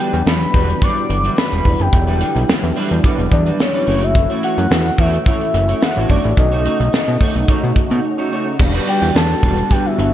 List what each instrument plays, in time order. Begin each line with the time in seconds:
Already playing: analog synth pad D3 E3 E4, analog polysynth F#3 G3 B3 D4, soft synth lead G5
0.00 clean electric guitar G3 D4 F#4 B4
0.13 analog synth bass E2, muted clean electric guitar stroke, closed hi-hat, shaker
0.26 analog synth bass E2, soft synth lead B5, muted clean electric guitar stroke, snare, shaker
0.41 muted clean electric guitar stroke, closed hi-hat, shaker
0.54 analog synth bass E1, clean electric guitar G3 D4 F#4 B4, kick, open hi-hat
0.68 muted clean electric guitar stroke, closed hi-hat, shaker
0.82 clean electric guitar G3 D4 F#4 B4, soft synth lead D6, kick, closed hi-hat, shaker
0.96 muted clean electric guitar stroke, closed hi-hat, shaker
1.09 analog synth bass G1, muted clean electric guitar stroke, closed hi-hat, shaker
1.24 clean electric guitar G3 D4 F#4 B4, closed hi-hat, shaker
1.37 soft synth lead B5, muted clean electric guitar stroke, snare, shaker
1.52 analog synth bass E1, clean electric guitar G3 D4 F#4 B4, shaker
1.65 analog synth bass E1, muted clean electric guitar stroke, kick, open hi-hat
1.79 analog synth bass F#1, soft synth lead G5, muted clean electric guitar stroke, closed hi-hat, shaker
1.93 analog synth bass E1, muted clean electric guitar stroke, kick, closed hi-hat, shaker
2.07 clean electric guitar G3 D4 F#4 B4, closed hi-hat, shaker
2.20 clean electric guitar G3 D4 F#4 B4, closed hi-hat, shaker
2.35 analog synth bass B1, muted clean electric guitar stroke, closed hi-hat, shaker
2.48 analog synth bass E2, muted clean electric guitar stroke, snare, shaker
2.63 analog synth bass E2, muted clean electric guitar stroke, closed hi-hat, shaker
2.76 clean electric guitar G3 D4 F#4 B4, open hi-hat
2.91 analog synth bass E2, muted clean electric guitar stroke, closed hi-hat, shaker
3.04 clean electric guitar G3 D4 F#4 B4, kick, closed hi-hat, shaker
3.18 analog synth bass E1, muted clean electric guitar stroke, closed hi-hat, shaker
3.32 analog synth bass E2, soft synth lead D5, muted clean electric guitar stroke, kick, closed hi-hat, shaker
3.46 clean electric guitar G3 D4 F#4 B4, closed hi-hat, shaker
3.59 soft synth lead C#5, muted clean electric guitar stroke, snare, shaker
3.74 clean electric guitar G3 D4 F#4 B4, shaker
3.86 analog synth bass F#1, analog synth pad E3 A3, analog polysynth A3 C#4 E4 F#4, clean electric guitar A3 E4 F#4 C#5, open hi-hat
4.01 soft synth lead E5, muted clean electric guitar stroke, closed hi-hat, shaker
4.15 muted clean electric guitar stroke, kick, closed hi-hat, shaker
4.30 clean electric guitar A3 E4 F#4 C#5, closed hi-hat, shaker
4.43 clean electric guitar A3 E4 F#4 C#5, soft synth lead F#5, closed hi-hat, shaker
4.58 analog synth bass F#2, muted clean electric guitar stroke, closed hi-hat, shaker
4.71 analog synth bass E2, muted clean electric guitar stroke, snare, shaker
4.85 muted clean electric guitar stroke, closed hi-hat, shaker
4.98 analog synth bass E2, clean electric guitar A3 E4 F#4 C#5, soft synth lead E5, kick, open hi-hat
5.13 muted clean electric guitar stroke, closed hi-hat, shaker
5.26 clean electric guitar A3 E4 F#4 C#5, soft synth lead E5, kick, closed hi-hat, shaker
5.41 muted clean electric guitar stroke, closed hi-hat, shaker
5.54 analog synth bass F#1, muted clean electric guitar stroke, closed hi-hat, shaker
5.69 clean electric guitar A3 E4 F#4 C#5, closed hi-hat, shaker
5.82 soft synth lead F#5, muted clean electric guitar stroke, snare, shaker
5.96 analog synth bass A1, clean electric guitar A3 E4 F#4 C#5, closed hi-hat, shaker
6.09 analog synth bass G1, clean electric guitar A3 E4 F#4 C#5, soft synth lead D5, kick, open hi-hat
6.24 analog synth bass A1, muted clean electric guitar stroke, closed hi-hat, shaker
6.36 analog synth bass B1, analog synth pad C#3 D#4, analog polysynth A3 C#4 D#4 F#4, soft synth lead D#5, muted clean electric guitar stroke, kick, closed hi-hat, shaker
6.52 clean electric guitar A3 D#4 F#4 C#5, shaker
6.65 clean electric guitar A3 D#4 F#4 C#5, closed hi-hat, shaker
6.79 analog synth bass B1, muted clean electric guitar stroke, closed hi-hat, shaker
6.92 muted clean electric guitar stroke, snare, shaker
7.07 analog synth bass B2, muted clean electric guitar stroke, shaker
7.20 clean electric guitar A3 D#4 F#4 C#5, kick, open hi-hat
7.35 analog synth bass B1, muted clean electric guitar stroke, closed hi-hat, shaker
7.48 clean electric guitar A3 D#4 F#4 C#5, kick, closed hi-hat, shaker
7.62 analog synth bass B2, muted clean electric guitar stroke, shaker
7.76 muted clean electric guitar stroke, kick, closed hi-hat, shaker
7.90 analog synth bass B2, clean electric guitar A3 D#4 F#4 C#5, closed hi-hat, shaker
8.04 muted clean electric guitar stroke
8.18 clean electric guitar A3 D#4 F#4 C#5
8.31 clean electric guitar A3 D#4 F#4 C#5
8.46 muted clean electric guitar stroke
8.59 analog synth bass E1, analog synth pad D3 G3 F#4, analog polysynth G3 B3 D4 F4, muted clean electric guitar stroke, kick, crash, shaker
8.67 analog polysynth F#4
8.74 clean electric guitar G3 D4 F#4 B4, closed hi-hat, shaker
8.87 clean electric guitar G3 D4 F#4 B4, soft synth lead G5, closed hi-hat, shaker
9.02 analog synth bass E2, muted clean electric guitar stroke, closed hi-hat, shaker
9.15 analog synth bass E2, soft synth lead A5, muted clean electric guitar stroke, snare, shaker
9.30 muted clean electric guitar stroke, closed hi-hat, shaker
9.43 analog synth bass E1, clean electric guitar G3 D4 F#4 B4, kick, open hi-hat
9.58 muted clean electric guitar stroke, closed hi-hat, shaker
9.70 clean electric guitar G3 D4 F#4 B4, soft synth lead G5, kick, closed hi-hat, shaker
9.85 soft synth lead E5, muted clean electric guitar stroke, shaker
9.98 analog synth bass G1, muted clean electric guitar stroke, closed hi-hat, shaker